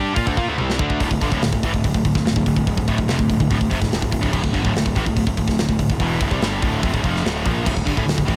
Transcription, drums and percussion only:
0.16 kick, open hi-hat
0.27 kick
0.37 kick
0.58 high tom
0.70 snare
0.79 kick
0.90 kick
1.00 kick, open hi-hat
1.11 kick
1.21 kick, open hi-hat
1.32 kick
1.42 snare, open hi-hat
1.53 kick
1.63 kick, open hi-hat
1.74 kick
1.84 kick, open hi-hat
1.94 kick
2.05 kick, open hi-hat
2.15 kick, snare
2.26 snare, open hi-hat
2.36 kick
2.46 kick, open hi-hat
2.56 kick
2.67 kick, open hi-hat
2.78 kick
2.88 kick, open hi-hat
2.98 kick
3.08 snare, open hi-hat
3.19 kick
3.30 kick, open hi-hat
3.40 kick
3.51 kick, open hi-hat
3.61 kick
3.71 kick, open hi-hat
3.82 kick, snare
3.92 snare, open hi-hat
4.02 kick
4.12 kick, open hi-hat
4.23 kick
4.33 kick, crash
4.44 kick
4.54 kick, open hi-hat
4.65 kick
4.76 snare, open hi-hat
4.86 kick
4.96 kick, open hi-hat
5.06 kick
5.17 kick, open hi-hat
5.27 kick
5.37 kick, open hi-hat
5.48 kick, snare
5.58 snare, open hi-hat
5.69 kick
5.79 kick, open hi-hat
5.90 kick
6.00 kick, open hi-hat
6.21 kick, open hi-hat
6.31 kick
6.42 snare, open hi-hat
6.62 kick, open hi-hat
6.83 kick, open hi-hat
6.94 kick
7.04 kick, open hi-hat
7.16 snare
7.26 snare, open hi-hat
7.46 kick, open hi-hat
7.66 kick, crash
7.77 kick
7.87 kick, open hi-hat
7.97 kick
8.08 snare, open hi-hat
8.18 kick
8.28 kick, open hi-hat

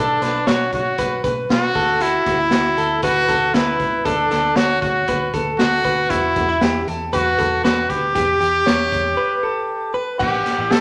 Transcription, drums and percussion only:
0.22 snare, closed hi-hat
0.47 snare, closed hi-hat
0.73 kick, closed hi-hat
0.98 kick, closed hi-hat
1.24 kick, closed hi-hat
1.50 snare, closed hi-hat
1.75 kick, open hi-hat
2.01 closed hi-hat
2.26 kick, snare, closed hi-hat
2.51 snare, closed hi-hat
2.78 closed hi-hat
3.02 kick, closed hi-hat
3.28 kick, closed hi-hat
3.54 snare, closed hi-hat
3.79 kick, closed hi-hat
4.06 kick, closed hi-hat
4.31 snare, closed hi-hat
4.56 snare, closed hi-hat
4.82 kick, closed hi-hat
5.08 kick, closed hi-hat
5.34 kick, closed hi-hat
5.59 snare, closed hi-hat
5.84 kick, closed hi-hat
6.10 kick, closed hi-hat
6.36 kick, closed hi-hat
6.61 snare, closed hi-hat
6.88 closed hi-hat
7.13 kick, closed hi-hat
7.39 kick, closed hi-hat
7.65 snare, closed hi-hat
7.90 kick, closed hi-hat
8.16 kick, closed hi-hat
8.41 closed hi-hat
8.67 snare, closed hi-hat
8.92 kick, closed hi-hat
10.20 kick, crash
10.46 snare, closed hi-hat
10.71 snare, closed hi-hat

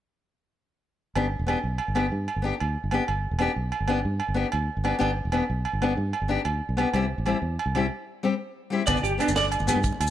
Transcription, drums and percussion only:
1.16 low agogo
1.48 low agogo
1.78 low agogo
1.96 low agogo
2.28 low agogo
2.60 low agogo
2.91 low agogo
3.08 low agogo
3.39 low agogo
3.72 low agogo
3.88 low agogo
4.20 low agogo
4.52 low agogo
4.85 low agogo
5.01 low agogo
5.32 low agogo
5.65 low agogo
5.82 low agogo
6.13 low agogo
6.45 low agogo
6.78 low agogo
6.94 low agogo
7.26 low agogo
7.59 low agogo
7.75 low agogo
8.87 kick, closed hi-hat, high conga, low conga, low agogo, maracas
8.97 low conga, maracas
9.04 closed hi-hat, maracas
9.20 closed hi-hat, low agogo
9.28 high conga, low conga, maracas
9.36 snare, closed hi-hat, low conga
9.45 low conga
9.51 closed hi-hat, low agogo, maracas
9.59 low conga, maracas
9.68 closed hi-hat, high conga, low agogo, maracas
9.83 kick, closed hi-hat, maracas
9.92 low conga
10.00 closed hi-hat, low agogo

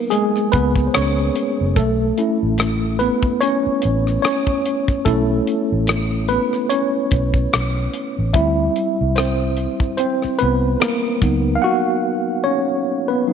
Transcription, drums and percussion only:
0.11 closed hi-hat
0.36 cross-stick
0.52 kick, closed hi-hat
0.76 kick
0.94 cross-stick, closed hi-hat
1.36 closed hi-hat
1.76 kick, closed hi-hat
2.18 closed hi-hat
2.58 cross-stick, closed hi-hat
2.99 closed hi-hat
3.22 kick
3.41 closed hi-hat
3.82 closed hi-hat
4.07 cross-stick
4.24 cross-stick, closed hi-hat
4.47 kick
4.66 closed hi-hat
4.88 kick
5.06 kick, closed hi-hat
5.47 closed hi-hat
5.87 cross-stick, closed hi-hat
6.28 closed hi-hat
6.53 cross-stick
6.70 closed hi-hat
7.11 kick, closed hi-hat
7.34 kick
7.53 cross-stick, closed hi-hat
7.94 closed hi-hat
8.34 kick, closed hi-hat
8.76 closed hi-hat
9.16 cross-stick, closed hi-hat
9.57 closed hi-hat
9.80 kick
9.98 closed hi-hat
10.22 cross-stick
10.39 closed hi-hat
10.81 cross-stick, closed hi-hat
11.22 kick, closed hi-hat

